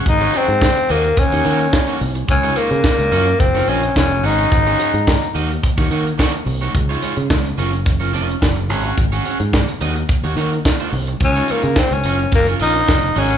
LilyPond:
<<
  \new Staff \with { instrumentName = "Clean electric guitar" } { \time 4/4 \key ges \lydian \tempo 4 = 108 r16 <des' ges' aes' des''>16 <des' ges' aes' des''>16 r8. <bes ees' ges' ees''>16 r8 <bes ees' ges' des''>16 <bes ees' ges' des''>16 r8 <bes ees' ges' des''>16 r8 | r16 <aes ees' f' des''>16 <aes ees' f' des''>16 r8. <des' f' bes' des''>16 r8 <des' f' bes' des''>16 <des' f' bes' ees''>16 r8. <des' ges' aes' des''>16 <des' ges' aes' des''>16 | r16 <des' ges' aes' des''>16 <des' ges' aes' des''>16 r8. <bes ees' ges' ees''>16 r8 <bes ees' ges' des''>16 <bes ees' ges' des''>16 r16 <bes ees' ges' des''>16 r8 <bes ees' ges' des''>16 | r16 <aes ees' f' des''>16 <aes ees' f' des''>16 r8. <des' f' bes' des''>16 r8 <des' f' bes' des''>16 <des' f' bes' ees''>16 r8. <des' ges' aes' des''>16 <des' ges' aes' des''>16 |
r16 <des' ges' aes' des''>16 <des' ges' aes' des''>16 r8. <bes ees' ges' ees''>16 r8 <bes ees' ges' des''>16 <bes ees' ges' des''>16 r8 <bes ees' ges' des''>16 r8 | r16 <aes ees' f' des''>16 <aes ees' f' des''>16 r8. <des' f' bes' des''>16 r8 <des' f' bes' des''>16 <des' f' bes' ees''>16 r8. <des' ges' aes' des''>16 <des' ges' aes' des''>16 | }
  \new Staff \with { instrumentName = "Tenor saxophone" } { \time 4/4 \key ges \lydian ees'8 c'4 bes8 des'4. r8 | des'8 bes4. c'8 des'8 des'8 ees'8~ | ees'4. r2 r8 | r1 |
r1 | des'8 bes8 c'16 des'8. bes8 ees'4 des'8 | }
  \new Staff \with { instrumentName = "Fingered electric bass" } { \clef bass \time 4/4 \key ges \lydian aes,,8 r16 aes,8 r16 ees,8 r16 ees,16 ees8 r8 c,8 | des,8 r16 des16 r16 des,16 ges,8 ges,,8 bes,,8 f,,8 aes,,8 | aes,,8 r16 aes,8 r16 ees,8 r16 ees,16 ees8 r8 c,8 | des,8 r16 des16 des,8 ges,,4 f,,8 ges,,8 aes,,8 |
aes,,8 r16 aes,8 r16 ees,8 r16 ees,16 ees8 r8 c,8 | des,8 r16 des16 r16 des,16 ges,,8 ges,,8 bes,,8 f,,8 aes,,8 | }
  \new DrumStaff \with { instrumentName = "Drums" } \drummode { \time 4/4 <hh bd>16 hh16 hh16 hh16 <hc bd sn>16 hh16 hh16 hh16 <hh bd>16 hh16 hh16 hh16 <hc bd sn>16 hh16 hho16 hh16 | <hh bd>16 hh16 hh16 hh16 <hc bd sn>16 hh16 hh16 hh16 <hh bd>16 <hh sn>16 hh16 hh16 <hc bd sn>16 hh16 hho16 hh16 | <hh bd>16 hh16 hh16 hh16 <hc bd sn>16 hh16 hh16 hh16 <hh bd>16 <hh bd sn>16 hh16 hh16 <hc bd sn>16 hh16 hho16 hh16 | <hh bd>16 hh16 hh16 hh16 <hc bd sn>16 hh16 hh16 hh16 <hh bd>16 hh16 hh16 hh16 <hc bd sn>16 hh16 hho16 hh16 |
<hh bd>16 hh16 hh16 hh16 <hc bd sn>16 hh16 hh16 hh16 <hh bd>16 hh16 hh16 hh16 <hc bd sn>16 hh16 hho16 hh16 | <hh bd>16 hh16 hh16 hh16 <hc bd sn>16 hh16 hh16 hh16 <hh bd>16 hh16 hh16 hh16 <hc bd sn>16 hh16 hho16 hh16 | }
>>